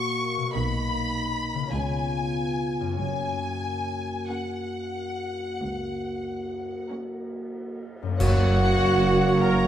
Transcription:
Already playing: harp A#2 A#3 F#4 C#5, french horn section A#3 F#4, violin section C#6
0.37 harp B2
0.42 harp A#3
0.47 harp F#4 D#5
0.54 double bass section B1, cello section B2, viola section A#3 D#4, french horn section D#4, violin section F#4 D#5 B5
1.54 harp C#3
1.59 harp B3
1.63 harp F4
1.67 violin section F4 B4, harp C#5
1.72 double bass section C#2, cello section C#3, viola section G#3 C#4, french horn section B3 F4, violin section G#5
2.80 harp F#2
2.85 harp A#3
2.90 harp F#4
2.94 cello section F#2, harp C#5, violin section G#5
2.99 double bass section F#1, french horn section A#3 F#4
4.29 viola section A#3 C#4, violin section F#4 A#4 F#5
5.61 cello section C#2, double bass section C#2
6.91 viola section A#3 C#4, violin section F#4 A#4
8.03 harp F#2
8.07 harp A#3
8.11 harp C#4
8.16 double bass section F#1, timpani F#2, bassoon A#3, clarinet F#4, viola section F#4, harp C#5, oboe C#5, violin section F#5, concert bass drum, crash
8.21 cello section F#2, french horn section A#3 F#4, flute F#5, violin section F#5
9.40 clarinet A#4, viola section A#4, violin section A#5

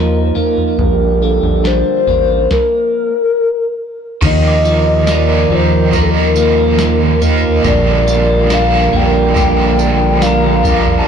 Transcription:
Already playing: analog synth bass D#2, french horn section F3 A#3 D#4 F4 A#4, clean electric guitar F3 A#3 D#4, soft synth lead A#4
0.35 clean electric guitar A#3, floor tom
0.58 floor tom
0.79 analog synth bass A#1, french horn section D3 G3 G4, soft synth lead A#4, kick, floor tom
1.22 clean electric guitar A#3, soft synth lead A4
1.43 analog synth bass A#1, floor tom
1.64 clean electric guitar D4, soft synth lead C5, snare
2.07 analog synth bass A1, clean electric guitar A#3, floor tom
2.51 soft synth lead A#4, kick, snare
4.22 analog synth bass D#2, overdriven electric guitar D#3 F3 A#3 D#4, clean electric guitar D#3, french horn section D#3 F3 A#3 F4 A#4, soft synth lead D#5, kick, floor tom, crash, tambourine
4.26 overdriven electric guitar A#4
4.48 glockenspiel D6
4.65 clean electric guitar F3, tambourine
5.06 overdriven electric guitar F3 A#3, clean electric guitar A#3, snare, tambourine
5.10 overdriven electric guitar D#4 A#4, soft synth lead D5
5.50 analog synth bass D#2, clean electric guitar F3, floor tom
5.55 soft synth lead C5
5.91 overdriven electric guitar D#3 F3 A#3 D#4, clean electric guitar D#4, kick, floor tom, tambourine
5.95 overdriven electric guitar A#4, soft synth lead A#4
6.02 soft synth lead A4
6.11 soft synth lead A#4
6.36 clean electric guitar A#3, tambourine
6.40 soft synth lead A#4
6.79 clean electric guitar F3, snare, tambourine
7.20 clean electric guitar A#3, overdriven electric guitar D#4 A#4, floor tom, tambourine
7.25 overdriven electric guitar A#3
7.43 floor tom
7.62 analog synth bass A#1, overdriven electric guitar A#2 D3 F3 A#3 D4, clean electric guitar A#2, french horn section D3 G3, kick, floor tom, tambourine
7.66 overdriven electric guitar G4, soft synth lead D5
8.07 clean electric guitar A#3, tambourine
8.47 overdriven electric guitar F3 A#3, clean electric guitar D4, snare, tambourine
8.51 overdriven electric guitar D4 G4, soft synth lead F5
8.93 analog synth bass A#1, clean electric guitar A#3, soft synth lead G5, floor tom
9.34 overdriven electric guitar A#2 D3 F3 A#3 D4, clean electric guitar G4, kick, floor tom, tambourine
9.39 overdriven electric guitar G4
9.79 clean electric guitar D4, tambourine
10.21 clean electric guitar A#3, soft synth lead F5, snare, tambourine
10.27 glockenspiel A#5
10.63 clean electric guitar D4, overdriven electric guitar D4 G4, kick, floor tom, tambourine
10.67 overdriven electric guitar F3 A#3
10.87 floor tom
10.99 glockenspiel A5

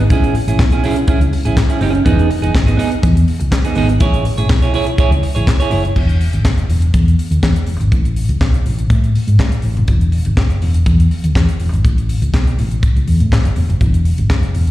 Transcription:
0.01 muted clean electric guitar stroke
0.10 fingered electric bass A1, clean electric guitar C#4 E4 G#4, kick, closed hi-hat
0.24 closed hi-hat
0.35 muted clean electric guitar stroke, open hi-hat
0.47 fingered electric bass A1, clean electric guitar C#4 E4 G#4, closed hi-hat
0.59 fingered electric bass B1, kick, snare, clap
0.72 clean electric guitar C#4 E4 G#4, closed hi-hat
0.83 clean electric guitar C#4 E4 G#4, open hi-hat
0.96 muted clean electric guitar stroke, closed hi-hat
1.08 clean electric guitar C#4 E4 G#4, kick, closed hi-hat
1.21 fingered electric bass C#2, muted clean electric guitar stroke, closed hi-hat
1.32 muted clean electric guitar stroke, open hi-hat
1.45 fingered electric bass A1, clean electric guitar C#4 E4 G#4, closed hi-hat
1.57 muted clean electric guitar stroke, kick, snare, clap
1.70 clean electric guitar C#4 E4 G#4, closed hi-hat
1.81 fingered electric bass F#1, clean electric guitar C#4 E4 G#4, open hi-hat
1.94 muted clean electric guitar stroke, closed hi-hat
2.05 fingered electric bass E1, clean electric guitar B3 D#4 G#4, kick, closed hi-hat
2.19 closed hi-hat
2.30 muted clean electric guitar stroke, open hi-hat
2.42 fingered electric bass E1, clean electric guitar B3 D#4 G#4, closed hi-hat
2.54 fingered electric bass G#1, kick, snare, clap
2.66 clean electric guitar B3 D#4 G#4, closed hi-hat
2.77 clean electric guitar B3 D#4 G#4, open hi-hat
2.91 muted clean electric guitar stroke, closed hi-hat
3.02 fingered electric bass E2, muted clean electric guitar stroke, kick, closed hi-hat
3.15 muted clean electric guitar stroke, closed hi-hat
3.28 open hi-hat
3.40 fingered electric bass C#2, muted clean electric guitar stroke, closed hi-hat
3.51 muted clean electric guitar stroke, kick, snare, clap
3.65 clean electric guitar B3 D#4 G#4, closed hi-hat
3.75 fingered electric bass G#1, clean electric guitar B3 D#4 G#4, open hi-hat
3.89 muted clean electric guitar stroke, closed hi-hat
4.00 fingered electric bass A1, clean electric guitar E4 G#4 C#5, kick, closed hi-hat
4.14 closed hi-hat
4.25 muted clean electric guitar stroke, open hi-hat
4.38 fingered electric bass A1, clean electric guitar E4 G#4 C#5, closed hi-hat
4.49 fingered electric bass B1, kick, snare, clap
4.62 clean electric guitar E4 G#4 C#5, closed hi-hat
4.74 clean electric guitar E4 G#4 C#5, open hi-hat
4.87 muted clean electric guitar stroke, closed hi-hat
4.98 clean electric guitar E4 G#4 C#5, kick, closed hi-hat
5.11 fingered electric bass C#2, muted clean electric guitar stroke, closed hi-hat
5.22 muted clean electric guitar stroke, open hi-hat
5.35 fingered electric bass A1, clean electric guitar E4 G#4 C#5, closed hi-hat
5.47 muted clean electric guitar stroke, kick, snare, clap
5.60 clean electric guitar E4 G#4 C#5, closed hi-hat
5.71 fingered electric bass F#1, clean electric guitar E4 G#4 C#5, open hi-hat
5.84 muted clean electric guitar stroke, closed hi-hat
5.96 fingered electric bass E1, kick, crash
6.09 closed hi-hat
6.21 open hi-hat
6.33 fingered electric bass G#1, closed hi-hat
6.45 fingered electric bass F#1, kick, snare, clap
6.58 closed hi-hat
6.69 fingered electric bass E1, open hi-hat
6.82 closed hi-hat
6.94 fingered electric bass E2, kick, closed hi-hat
7.08 closed hi-hat
7.19 open hi-hat
7.31 fingered electric bass D#2, closed hi-hat
7.43 fingered electric bass E2, kick, snare, clap
7.56 closed hi-hat
7.67 fingered electric bass E1, open hi-hat
7.80 fingered electric bass G#1, closed hi-hat
7.92 fingered electric bass A1, kick, closed hi-hat
8.05 closed hi-hat
8.16 open hi-hat
8.29 fingered electric bass C#2, closed hi-hat
8.41 fingered electric bass B1, kick, snare, clap
8.54 closed hi-hat
8.65 fingered electric bass A1, open hi-hat
8.79 closed hi-hat
8.90 fingered electric bass A2, kick, closed hi-hat
9.04 closed hi-hat
9.15 open hi-hat
9.27 fingered electric bass G#2, closed hi-hat
9.39 fingered electric bass A2, kick, snare, clap
9.52 closed hi-hat
9.62 fingered electric bass A1, open hi-hat
9.77 fingered electric bass F#1, closed hi-hat
9.88 fingered electric bass E1, kick, closed hi-hat
10.01 closed hi-hat
10.12 open hi-hat
10.25 fingered electric bass G#1, closed hi-hat
10.37 fingered electric bass F#1, kick, snare, clap
10.50 closed hi-hat
10.62 fingered electric bass E1, open hi-hat
10.74 closed hi-hat
10.86 fingered electric bass E2, kick, closed hi-hat
11.00 closed hi-hat
11.11 open hi-hat
11.24 fingered electric bass D#2, closed hi-hat
11.35 fingered electric bass E2, kick, snare, clap
11.49 closed hi-hat
11.60 fingered electric bass E1, open hi-hat
11.72 fingered electric bass G#1, closed hi-hat
11.85 fingered electric bass A1, kick, closed hi-hat
11.98 closed hi-hat
12.09 open hi-hat
12.22 fingered electric bass C#2, closed hi-hat
12.34 fingered electric bass B1, kick, snare, clap
12.47 closed hi-hat
12.58 fingered electric bass A1, open hi-hat
12.71 closed hi-hat
12.83 kick, closed hi-hat
12.96 fingered electric bass C#2, closed hi-hat
13.08 fingered electric bass E2, open hi-hat
13.20 fingered electric bass A2, closed hi-hat
13.32 kick, snare, clap
13.44 fingered electric bass F#1, closed hi-hat
13.56 fingered electric bass E1, open hi-hat
13.69 fingered electric bass F#1, closed hi-hat
13.81 fingered electric bass E1, kick, closed hi-hat
13.94 closed hi-hat
14.05 open hi-hat
14.18 fingered electric bass G#1, closed hi-hat
14.30 fingered electric bass F#1, kick, snare, clap
14.43 closed hi-hat
14.54 fingered electric bass E1, open hi-hat
14.67 closed hi-hat

